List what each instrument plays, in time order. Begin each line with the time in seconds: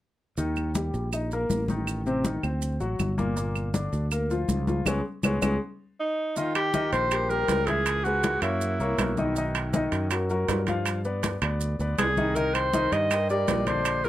0.37 fretless electric bass D#2, grand piano D#3 D#4, high conga, maracas
0.56 high conga, claves, maracas
0.75 grand piano G3 G4, high conga, maracas
0.94 fretless electric bass A#1, high conga, maracas
1.13 grand piano D#4 D#5, high conga, claves, maracas
1.31 grand piano A#3 A#4, high conga, maracas
1.50 fretless electric bass A1, high conga, maracas
1.68 grand piano D#3 D#4, high conga, maracas
1.87 high conga, claves, maracas
2.06 grand piano C3 C4, high conga, maracas
2.25 grand piano D#3 D#4, high conga, maracas
2.43 fretless electric bass D2, grand piano C4 C5, high conga, claves, maracas
2.62 high conga, maracas
2.80 fretless electric bass A1, grand piano F#3 F#4, high conga, maracas
2.99 fretless electric bass G1, high conga, claves, maracas
3.18 grand piano A#2 A#3, high conga, maracas
3.36 grand piano A#2 A#3, high conga, maracas
3.56 high conga, claves, maracas
3.74 grand piano D3 D4, high conga, maracas
3.93 fretless electric bass D2, high conga, maracas
4.11 grand piano A#3 A#4, high conga, claves, maracas
4.30 grand piano F3 F4, high conga, maracas
4.48 fretless electric bass C#2, high conga, maracas
4.67 grand piano F3 F4, high conga, maracas
4.86 fretless electric bass C#2, grand piano G#3 B3 C#4, high conga, claves, maracas
5.23 fretless electric bass C#2, grand piano G#3 B3 C#4, high conga, claves, maracas
5.42 fretless electric bass C#2, grand piano G#3 B3 C#4, high conga, claves, maracas
6.00 alto saxophone D#4
6.36 grand piano D#3 D#4 D#5, alto saxophone F4, high conga, maracas
6.55 alto saxophone G4, high conga, high timbale, claves, maracas
6.74 grand piano D#3 D#4 D#5, high conga, low timbale, maracas
6.92 fretless electric bass A#1, alto saxophone C5, high conga, high timbale, maracas
7.11 grand piano G3 G4 A#4, high conga, high timbale, claves, maracas
7.30 grand piano G3 G4 A#4, alto saxophone A#4, high conga, maracas
7.48 fretless electric bass C#2, high conga, high timbale, low timbale, maracas
7.67 grand piano E3 E4 E5, alto saxophone G#4, high conga, high timbale, maracas
7.86 high conga, high timbale, claves, maracas
8.04 grand piano G#3 G#4 B4, alto saxophone F#4, high conga, maracas
8.23 high conga, high timbale, low timbale, maracas
8.42 fretless electric bass F#2, grand piano A#3 A#4 C#5, alto saxophone E4, high conga, high timbale, claves, maracas
8.61 high conga, maracas
8.80 fretless electric bass C2, grand piano A#3 A#4 C#5, high conga, maracas
8.98 fretless electric bass B1, high conga, high timbale, low timbale, claves, maracas
9.17 grand piano D#3 D#4 D#5, high conga, maracas
9.36 grand piano D#3 D#4 D#5, maracas
9.55 high conga, high timbale, claves, maracas
9.73 grand piano D#3 D#4 D#5, high conga, low timbale, maracas
9.92 fretless electric bass F#2, high conga, high timbale, maracas
10.11 grand piano F#3 F#4 A#4, high conga, high timbale, claves, maracas
10.30 grand piano F#3 F#4 A#4, high conga, maracas
10.48 fretless electric bass G2, high conga, high timbale, low timbale, maracas
10.67 grand piano F3 F4 F5, high conga, high timbale, maracas
10.85 high conga, high timbale, claves, maracas
11.05 grand piano B3 B4 D5, high conga, maracas
11.23 high conga, high timbale, low timbale, maracas
11.42 fretless electric bass D2, grand piano B3 B4 D5, high conga, high timbale, claves, maracas
11.61 high conga, maracas
11.79 fretless electric bass D2, grand piano B3 B4 D5, high conga, maracas
11.98 fretless electric bass C2, alto saxophone G#4, high conga, high timbale, low timbale, claves, maracas
12.17 grand piano D#3 D#4 D#5, high conga, maracas
12.36 grand piano D#3 D#4 D#5, alto saxophone A#4, high conga, maracas
12.54 alto saxophone C5, high conga, high timbale, claves, maracas
12.73 grand piano D#3 D#4 D#5, high conga, low timbale, maracas
12.92 fretless electric bass G2, alto saxophone D#5, high conga, high timbale, maracas
13.11 grand piano G3 G4 A#4, high conga, high timbale, claves, maracas
13.30 grand piano G3 G4 A#4, alto saxophone D5, high conga, maracas
13.48 fretless electric bass A#1, high conga, high timbale, low timbale, maracas
13.67 grand piano D3 D4 D5, alto saxophone C5, high conga, high timbale, maracas
13.85 high conga, high timbale, claves, maracas
14.04 grand piano F3 F4 G#4, alto saxophone A#4, high conga, maracas